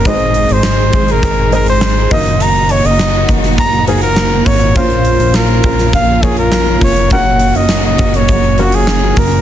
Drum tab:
HH |xxxxx-xxx-xxx-ox|xxxxxxxxxxxxx-ox|xxxxx-xxx-xxx-ox|x-xxx-xxxxxxx-ox|
SD |----o-------o---|----o--o----o---|----o--o----o---|----o-------o---|
BD |o-----o-o-----o-|------o-o-----o-|o-----o-o-o---o-|o-----o-o-----o-|